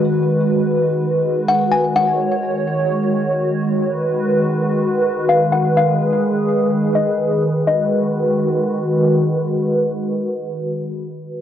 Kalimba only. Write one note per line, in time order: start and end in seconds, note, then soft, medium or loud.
1.48 1.71 F#5 medium
1.72 1.94 G#5 medium
1.96 2.41 F#5 loud
5.29 5.52 F5 medium
5.52 5.75 F#5 medium
5.77 6.22 F5 loud
6.95 7.18 D#5 medium
7.67 9.06 D#5 medium